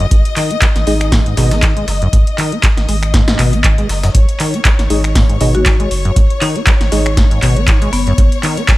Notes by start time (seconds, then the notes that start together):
Already playing: D#5
0.00 F#2, closed hi-hat
0.11 G#1 G#2, kick, closed hi-hat
0.25 closed hi-hat
0.36 D#3, clap, closed hi-hat, open hi-hat
0.51 B3, closed hi-hat
0.62 F#3, kick, snare, clap, closed hi-hat
0.76 G#1, snare, closed hi-hat
0.87 G#1 G#3 D#4 G#4 D#5, closed hi-hat, open hi-hat
1.01 finger snap, closed hi-hat
1.12 G#2, kick, snare, closed hi-hat, open hi-hat
1.26 G#2, closed hi-hat
1.37 G#1 B2 D#4 G#4 D#5, snare, closed hi-hat, open hi-hat
1.51 B3, snare, closed hi-hat
1.62 D#3, kick, snare, clap, closed hi-hat
1.77 G#3, closed hi-hat
1.88 F#1, snare, closed hi-hat, open hi-hat
2.02 F#2, closed hi-hat
2.13 G#1 G#2, kick, closed hi-hat
2.27 closed hi-hat
2.38 D#3, clap, closed hi-hat, open hi-hat
2.52 B3, closed hi-hat
2.63 F#3, kick, snare, clap, closed hi-hat
2.77 G#1, snare, closed hi-hat
2.89 G#1 G#3, closed hi-hat, open hi-hat
3.03 finger snap, closed hi-hat
3.14 G#2, kick, snare, closed hi-hat
3.28 G#2, snare, closed hi-hat
3.39 G#1 B2, finger snap, snare, clap, closed hi-hat, open hi-hat
3.53 B3, closed hi-hat
3.64 D#3, kick, clap, closed hi-hat
3.78 G#3, closed hi-hat
3.89 F#1, snare, closed hi-hat, open hi-hat
4.03 F#2, snare, closed hi-hat
4.15 G#1 G#2 C#5, kick, closed hi-hat
4.29 closed hi-hat
4.40 D#3, clap, closed hi-hat, open hi-hat
4.54 B3, closed hi-hat
4.65 F#3, kick, snare, clap, closed hi-hat
4.79 G#1, snare, closed hi-hat
4.90 G#1 G#3 D#4 G#4 D#5, closed hi-hat, open hi-hat
5.04 finger snap, closed hi-hat
5.15 G#2, kick, snare, closed hi-hat, open hi-hat
5.29 G#2, closed hi-hat
5.41 G#1 B2 D#4 G#4 D#5, closed hi-hat, open hi-hat
5.55 B3 F#4, closed hi-hat
5.66 D#3, kick, snare, clap, closed hi-hat
5.80 G#3, closed hi-hat
5.91 F#1, closed hi-hat, open hi-hat
6.05 F#2, closed hi-hat
6.16 G#1 G#2, kick, closed hi-hat
6.30 closed hi-hat
6.41 D#3 D#4, clap, closed hi-hat, open hi-hat
6.56 B3, closed hi-hat
6.67 F#3, kick, snare, clap, closed hi-hat
6.81 G#1, snare, closed hi-hat
6.92 G#1 G#3 D#4 G#4 D#5, snare, closed hi-hat, open hi-hat
7.06 finger snap, closed hi-hat
7.17 G#2, kick, snare, closed hi-hat
7.31 G#2, closed hi-hat
7.42 G#1 B2, clap, closed hi-hat, open hi-hat
7.56 B3, closed hi-hat
7.68 D#3, kick, snare, clap, closed hi-hat
7.82 G#3, closed hi-hat
7.93 F#1 B3, closed hi-hat, open hi-hat
8.07 F#2, closed hi-hat
8.18 G#1 G#2, kick, closed hi-hat
8.32 closed hi-hat
8.43 D#3, clap, closed hi-hat, open hi-hat
8.57 B3, closed hi-hat
8.68 F#3, kick, snare, clap, closed hi-hat